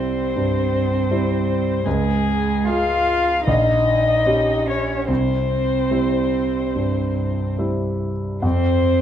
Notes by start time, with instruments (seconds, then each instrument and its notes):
Already playing: grand piano C2 G3 C4 E4, cello C4, violin C5
0.36 grand piano G2
1.11 grand piano G3 C4 E4
1.85 grand piano C#2, cello G#3, violin G#4
2.65 cello F4, grand piano F4 G#4, violin F5
3.45 grand piano A#1, cello D#4, violin D#5
4.26 grand piano C#4 G4
4.68 cello C#4, violin C#5
5.08 grand piano C2, cello C4, violin C5
5.91 grand piano G3 C4 E4
6.76 grand piano G2
7.58 grand piano G3 C4 E4
8.42 grand piano F2, cello C4, violin C5